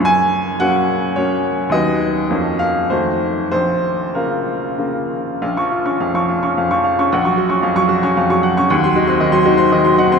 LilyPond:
<<
  \new Staff \with { instrumentName = "Upright piano" } { \time 3/4 \key bes \minor \tempo 4 = 107 aes''4 ges''4 des''4 | dis''4. f''8 c''4 | c''4 bes'4. r8 | f''16 des'''16 f'16 des'''16 f''16 des'''16 f'16 des'''16 f''16 des'''16 f''16 des'''16 |
ges''16 des'''16 ges'16 des'''16 f''16 des'''16 ges'16 des'''16 f''16 des'''16 ges''16 des'''16 | ges''16 c'''16 ges'16 c'''16 ees''16 c'''16 ges'16 c'''16 ees''16 c'''16 ges''16 c'''16 | }
  \new Staff \with { instrumentName = "Upright piano" } { \clef bass \time 3/4 \key bes \minor ges,4 <ges bes des'>4 <ges bes des'>4 | <dis, fis b dis'>4 <f, f bes des'>4 <f, ees a ges'>4 | bes,,4 <des bes f'>4 <des bes f'>4 | bes,,16 f8 des'16 f,16 f8 des'16 f,16 f8 des'16 |
bes,,16 ges8 des'16 f,16 ges8 des'16 f,16 ges8 des'16 | ees,16 ges16 ees'16 c'16 ees16 ges16 ees'16 c'16 ees16 ges16 ees'16 c'16 | }
>>